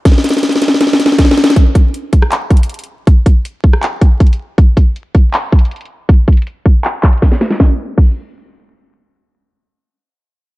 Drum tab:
CC |------------------------------------------------------------------------------------------------|------------------------------------------------------------------------------------------------|------------------------------------------------------------------------------------------------|------------------------------------------------------------------------------------------------|
HH |x-----------x--x--x--x--x-----x-----x-----------x-----------x-----------x-----------x---x---x---|x-----------x-----------x-----------x-----------x-----------x---x---x---x--x--x--x--------------|x-----------x-----------x-----------------------x-----------x-----------x---x---x---------------|x-----------x-----------x-----------x-----------x-----------x---x---x---x--x--x--x--------------|
CP |------------------------------------------------------------------------------------------------|------------------------------------------------x-----------------------------------------------|------------------------------------------------x-----------------------------------------------|------------------------------------------------x-----------------------------------------------|
SD |o---o---o---o---o---o---o---o---o---o---o---o---o---o---o---o---o---o---o---o---o---o---o---o---|------------------------------------------r-----------------------------------------------------|------------------------------------------r-----------------------------------------------------|------------------------------------------------------------------------------------------------|
BD |o-----------------------------------------------------------------------o-----------------------|o-----------o-----------------------o-----------------------o-----------------------------------|o-----------o-----------------------o-----------------------o-----------o-----------------------|o-----------o-----------------------o-----------------------o-----------------------------------|

CC |------------------------------------------------------------------------------------------------|------------------------x-----------------------------------------------------------------------|------------------------------------------------------------------------------------------------|
HH |x-----------x--x--x--x--x-----------------------x-----------x--x--x--x--x-----------------------|------------------------------------------------------------------------------------------------|------------------------------------------------------------------------------------------------|
CP |------------------------------------------------x-----------x-----------------------------------|------------------------------------------------------------------------------------------------|------------------------------------------------------------------------------------------------|
SD |------------------------------------------------------------------------o-----o-----o-----o-----|o-----------------------------------------------------------------------------------------------|------------------------------------------------------------------------------------------------|
BD |o-----------o-----------------------o-----------------------o-----------o-----------------------|o-----------------------o-----------------------------------------------------------------------|------------------------------------------------------------------------------------------------|